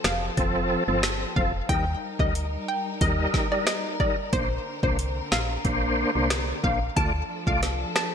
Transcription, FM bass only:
0, 0, Header, 1, 2, 480
1, 0, Start_track
1, 0, Tempo, 659341
1, 1233, Time_signature, 4, 2, 24, 8
1, 5930, End_track
2, 0, Start_track
2, 0, Title_t, "FM bass"
2, 0, Program_c, 0, 39
2, 33, Note_on_c, 0, 29, 91
2, 221, Note_off_c, 0, 29, 0
2, 272, Note_on_c, 0, 29, 95
2, 559, Note_off_c, 0, 29, 0
2, 639, Note_on_c, 0, 31, 98
2, 915, Note_off_c, 0, 31, 0
2, 993, Note_on_c, 0, 29, 100
2, 1180, Note_off_c, 0, 29, 0
2, 1232, Note_on_c, 0, 39, 111
2, 1420, Note_off_c, 0, 39, 0
2, 1597, Note_on_c, 0, 38, 88
2, 1874, Note_off_c, 0, 38, 0
2, 2192, Note_on_c, 0, 39, 100
2, 2380, Note_off_c, 0, 39, 0
2, 3151, Note_on_c, 0, 34, 107
2, 3339, Note_off_c, 0, 34, 0
2, 3517, Note_on_c, 0, 36, 94
2, 3794, Note_off_c, 0, 36, 0
2, 3873, Note_on_c, 0, 34, 90
2, 4060, Note_off_c, 0, 34, 0
2, 4112, Note_on_c, 0, 34, 93
2, 4399, Note_off_c, 0, 34, 0
2, 4481, Note_on_c, 0, 36, 97
2, 4756, Note_off_c, 0, 36, 0
2, 4832, Note_on_c, 0, 34, 94
2, 5020, Note_off_c, 0, 34, 0
2, 5072, Note_on_c, 0, 38, 109
2, 5260, Note_off_c, 0, 38, 0
2, 5437, Note_on_c, 0, 36, 89
2, 5714, Note_off_c, 0, 36, 0
2, 5930, End_track
0, 0, End_of_file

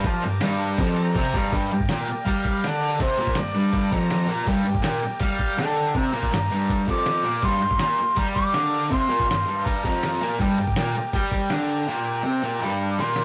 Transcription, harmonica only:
0, 0, Header, 1, 2, 480
1, 0, Start_track
1, 0, Key_signature, -2, "minor"
1, 0, Tempo, 369914
1, 58, Time_signature, 4, 2, 24, 8
1, 17188, End_track
2, 0, Start_track
2, 0, Title_t, "Harmonica"
2, 0, Program_c, 0, 22
2, 1260, Note_on_c, 0, 82, 100
2, 1985, Note_on_c, 0, 79, 96
2, 2005, Note_off_c, 0, 82, 0
2, 2461, Note_off_c, 0, 79, 0
2, 2477, Note_on_c, 0, 79, 81
2, 2928, Note_on_c, 0, 77, 86
2, 2947, Note_off_c, 0, 79, 0
2, 3460, Note_on_c, 0, 74, 85
2, 3479, Note_off_c, 0, 77, 0
2, 3639, Note_off_c, 0, 74, 0
2, 3647, Note_on_c, 0, 74, 74
2, 3757, Note_off_c, 0, 74, 0
2, 3923, Note_on_c, 0, 72, 87
2, 4402, Note_on_c, 0, 74, 90
2, 4421, Note_off_c, 0, 72, 0
2, 5096, Note_on_c, 0, 82, 109
2, 5116, Note_off_c, 0, 74, 0
2, 5822, Note_on_c, 0, 79, 102
2, 5842, Note_off_c, 0, 82, 0
2, 6261, Note_off_c, 0, 79, 0
2, 6269, Note_on_c, 0, 79, 93
2, 6766, Note_on_c, 0, 77, 90
2, 6785, Note_off_c, 0, 79, 0
2, 7221, Note_on_c, 0, 79, 92
2, 7241, Note_off_c, 0, 77, 0
2, 7474, Note_off_c, 0, 79, 0
2, 7494, Note_on_c, 0, 79, 91
2, 7760, Note_on_c, 0, 82, 105
2, 7779, Note_off_c, 0, 79, 0
2, 8217, Note_off_c, 0, 82, 0
2, 8225, Note_on_c, 0, 82, 101
2, 8883, Note_off_c, 0, 82, 0
2, 8964, Note_on_c, 0, 86, 116
2, 9671, Note_on_c, 0, 84, 108
2, 9690, Note_off_c, 0, 86, 0
2, 10118, Note_off_c, 0, 84, 0
2, 10126, Note_on_c, 0, 84, 99
2, 10570, Note_off_c, 0, 84, 0
2, 10622, Note_on_c, 0, 82, 91
2, 10725, Note_off_c, 0, 82, 0
2, 10836, Note_on_c, 0, 86, 116
2, 11508, Note_off_c, 0, 86, 0
2, 11591, Note_on_c, 0, 84, 106
2, 12024, Note_off_c, 0, 84, 0
2, 12071, Note_on_c, 0, 84, 96
2, 12505, Note_off_c, 0, 84, 0
2, 12514, Note_on_c, 0, 82, 87
2, 12742, Note_off_c, 0, 82, 0
2, 12767, Note_on_c, 0, 82, 110
2, 13437, Note_off_c, 0, 82, 0
2, 13498, Note_on_c, 0, 79, 100
2, 13940, Note_off_c, 0, 79, 0
2, 13970, Note_on_c, 0, 79, 83
2, 14417, Note_off_c, 0, 79, 0
2, 14433, Note_on_c, 0, 79, 94
2, 16633, Note_off_c, 0, 79, 0
2, 16854, Note_on_c, 0, 84, 92
2, 17188, Note_off_c, 0, 84, 0
2, 17188, End_track
0, 0, End_of_file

